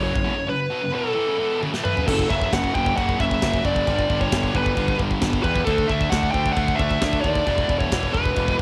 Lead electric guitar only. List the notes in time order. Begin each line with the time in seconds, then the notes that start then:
0.04 C#5
0.49 B4
0.95 A4
1.84 B4
2.08 A4
2.30 E5
2.53 F#5
2.75 G5
2.97 F#5
3.21 E5
3.66 D5
4.21 C#5
4.56 B4
5.43 B4
5.65 A4
5.88 E5
6.10 F#5
6.31 G5
6.52 F#5
6.76 E5
7.21 D5
7.79 C#5
8.13 B4